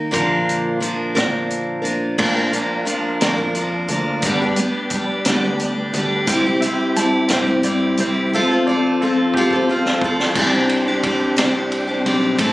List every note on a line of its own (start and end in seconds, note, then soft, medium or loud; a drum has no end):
0.00 0.11 A#3 soft
0.00 0.12 D#4 soft
0.00 0.12 A#4 soft
0.11 1.13 A#1 medium
0.11 0.81 A#2 medium
0.11 0.81 D3 medium
0.11 0.79 F3 medium
0.11 0.80 A#3 medium
0.11 0.81 D4 medium
0.11 0.81 A#4 medium
0.11 kick loud
0.11 closed hi-hat medium
0.49 closed hi-hat medium
0.80 1.16 F3 medium
0.80 1.15 A#3 medium
0.80 1.14 D4 medium
0.80 1.14 A#4 medium
0.80 closed hi-hat medium
1.15 1.85 A#2 medium
1.15 2.15 A#2 medium
1.15 1.85 D3 medium
1.15 1.83 F3 medium
1.15 1.82 A#3 medium
1.15 1.81 D4 medium
1.15 1.81 A#4 medium
1.15 kick medium
1.15 snare loud
1.15 closed hi-hat medium
1.50 closed hi-hat medium
1.82 2.17 F3 soft
1.82 2.17 A#3 soft
1.82 2.18 D4 soft
1.82 2.17 A#4 medium
1.82 closed hi-hat medium
2.18 2.36 A#2 medium
2.18 2.51 A#2 medium
2.18 2.36 D3 medium
2.18 2.36 F3 medium
2.18 2.36 A#3 medium
2.18 2.36 D4 medium
2.18 4.22 D4 medium
2.18 4.22 F4 medium
2.18 2.34 A#4 medium
2.18 4.22 A#4 medium
2.18 kick loud
2.18 crash loud
2.36 2.51 F3 soft
2.36 2.52 A#3 soft
2.36 2.53 D4 medium
2.36 2.53 A#4 medium
2.52 2.84 F3 medium
2.52 2.85 A#3 medium
2.52 2.85 D4 medium
2.52 2.85 A#4 medium
2.52 closed hi-hat medium
2.85 3.20 F3 medium
2.85 3.20 A#3 medium
2.85 3.20 D4 medium
2.85 3.21 A#4 medium
2.85 closed hi-hat medium
3.21 3.86 F2 medium
3.21 3.39 A#2 medium
3.21 3.38 D3 medium
3.21 3.37 F3 medium
3.21 3.37 A#3 medium
3.21 3.37 D4 medium
3.21 3.35 A#4 medium
3.21 snare loud
3.21 closed hi-hat medium
3.36 3.54 F3 soft
3.36 3.55 A#3 soft
3.36 3.55 D4 soft
3.36 3.54 A#4 medium
3.55 3.89 F3 medium
3.55 3.90 A#3 medium
3.55 3.90 D4 medium
3.55 3.91 A#4 medium
3.55 closed hi-hat medium
3.88 4.22 D2 medium
3.88 4.24 F3 medium
3.88 4.24 A#3 medium
3.88 4.25 D4 medium
3.88 4.25 A#4 medium
3.88 closed hi-hat medium
4.22 4.55 G2 medium
4.22 4.42 G2 medium
4.22 4.42 D3 medium
4.22 4.42 G3 medium
4.22 4.41 B3 medium
4.22 6.26 D4 medium
4.22 6.26 G4 medium
4.22 4.40 G4 medium
4.22 6.26 B4 medium
4.22 kick loud
4.22 closed hi-hat medium
4.26 4.40 D4 medium
4.41 4.57 G3 soft
4.41 4.58 B3 medium
4.41 4.58 D4 medium
4.41 4.58 G4 medium
4.56 4.92 G3 medium
4.56 4.93 B3 medium
4.56 4.93 D4 medium
4.56 closed hi-hat medium
4.60 4.93 G4 medium
4.90 5.27 G3 medium
4.90 kick medium
4.90 closed hi-hat medium
4.94 5.27 B3 medium
4.94 5.27 D4 medium
4.94 5.28 G4 medium
5.25 5.90 D2 medium
5.25 5.44 G2 medium
5.25 5.44 B3 loud
5.25 snare loud
5.25 closed hi-hat medium
5.29 5.44 D3 medium
5.29 5.45 G3 medium
5.29 5.43 D4 medium
5.29 5.43 G4 loud
5.44 5.61 G3 soft
5.44 5.61 B3 medium
5.44 5.61 D4 medium
5.44 5.61 G4 medium
5.60 5.95 G3 medium
5.60 5.95 B3 medium
5.60 closed hi-hat medium
5.64 5.95 D4 medium
5.64 5.97 G4 medium
5.93 6.26 D2 medium
5.93 6.28 G3 medium
5.93 6.28 B3 medium
5.93 6.29 D4 medium
5.93 closed hi-hat medium
5.98 6.28 G4 medium
6.27 6.60 C2 medium
6.27 6.46 C3 medium
6.27 6.46 G3 medium
6.27 6.45 C4 medium
6.27 6.46 E4 medium
6.27 8.31 E4 medium
6.27 8.30 G4 medium
6.27 6.45 G4 loud
6.27 8.30 C5 medium
6.27 6.61 G5 medium
6.27 kick loud
6.27 closed hi-hat medium
6.27 tambourine medium
6.46 6.64 C4 soft
6.46 6.63 E4 medium
6.46 6.63 G4 medium
6.61 6.95 G3 medium
6.61 6.94 E5 medium
6.61 closed hi-hat medium
6.66 6.96 C4 medium
6.66 6.97 E4 medium
6.66 6.98 G4 medium
6.96 7.30 G3 medium
6.96 7.31 C4 medium
6.96 7.31 E4 medium
6.96 7.31 G4 medium
6.96 7.29 A5 medium
6.96 closed hi-hat medium
6.96 tambourine soft
7.29 7.95 G2 medium
7.29 7.48 C3 medium
7.29 7.48 G3 medium
7.29 7.47 C4 loud
7.29 7.45 G4 medium
7.29 7.64 G5 medium
7.29 snare loud
7.29 closed hi-hat medium
7.29 tambourine loud
7.33 7.46 E4 loud
7.46 7.63 C4 soft
7.46 7.64 E4 medium
7.46 7.64 G4 medium
7.63 7.98 G3 medium
7.63 7.98 C4 medium
7.63 7.99 E4 medium
7.63 7.99 G4 medium
7.63 7.97 D5 medium
7.63 closed hi-hat medium
7.97 8.30 C2 loud
7.97 8.32 G3 medium
7.97 8.33 C4 medium
7.97 8.33 E4 medium
7.97 8.33 G4 medium
7.97 8.32 C5 medium
7.97 closed hi-hat medium
8.14 tambourine soft
8.33 8.50 F3 medium
8.33 8.50 C4 medium
8.33 10.34 F4 medium
8.33 8.50 F4 medium
8.33 10.34 A4 medium
8.33 8.50 A4 loud
8.33 10.35 C5 medium
8.33 8.66 E5 medium
8.51 8.68 C4 medium
8.51 8.67 F4 medium
8.51 8.67 A4 medium
8.67 9.01 F3 medium
8.67 9.01 C4 medium
8.67 9.01 F4 medium
8.67 9.02 A4 medium
8.67 8.99 D5 loud
9.01 9.35 F3 medium
9.01 9.35 C4 medium
9.01 9.35 F4 medium
9.01 9.34 A4 medium
9.01 9.36 A4 medium
9.34 9.52 F3 loud
9.34 9.52 C4 medium
9.34 9.67 G4 medium
9.34 kick medium
9.38 9.53 F4 medium
9.38 9.51 A4 loud
9.51 9.69 F4 medium
9.51 9.69 A4 medium
9.51 kick medium
9.55 9.69 C4 medium
9.69 10.02 F3 medium
9.69 10.03 C4 medium
9.69 10.02 F4 medium
9.69 10.03 F4 medium
9.69 10.04 A4 medium
9.86 snare medium
10.01 10.37 F3 medium
10.01 10.37 C4 medium
10.01 10.37 F4 medium
10.01 10.37 A4 medium
10.01 kick loud
10.19 snare medium
10.35 11.33 C2 medium
10.35 10.54 C3 medium
10.35 10.54 G3 medium
10.35 10.54 C4 medium
10.35 12.38 D4 medium
10.35 10.53 D4 medium
10.35 12.38 G4 medium
10.35 10.52 G4 medium
10.35 12.38 C5 medium
10.35 kick loud
10.35 crash loud
10.35 tambourine loud
10.53 10.88 C4 soft
10.53 10.86 D4 medium
10.53 10.87 G4 medium
10.69 ride medium
10.88 11.03 C4 soft
10.88 11.04 D4 medium
10.88 11.04 G4 medium
11.03 11.36 G3 medium
11.03 11.37 C4 medium
11.03 11.37 D4 medium
11.03 11.38 G4 medium
11.03 kick medium
11.03 ride medium
11.37 12.02 C2 medium
11.37 11.55 C3 loud
11.37 11.54 G3 medium
11.37 11.54 C4 medium
11.37 11.54 D4 loud
11.37 11.53 G4 loud
11.37 snare loud
11.37 ride loud
11.37 tambourine loud
11.54 11.89 C4 soft
11.54 11.87 D4 medium
11.54 11.86 G4 medium
11.72 ride medium
11.87 12.05 C4 soft
11.87 12.05 D4 medium
11.87 12.05 G4 medium
11.87 tambourine soft
12.06 12.38 B1 loud
12.06 12.39 G3 medium
12.06 12.39 C4 medium
12.06 12.40 D4 medium
12.06 12.40 G4 medium
12.06 ride medium
12.21 tambourine soft
12.38 12.53 A1 loud
12.38 12.53 A2 medium
12.38 12.53 E3 medium
12.38 12.53 A3 loud
12.38 12.53 C4 medium
12.38 12.53 E4 medium
12.38 12.53 A4 medium
12.38 12.53 C5 medium
12.38 kick loud
12.38 ride loud
12.38 tambourine medium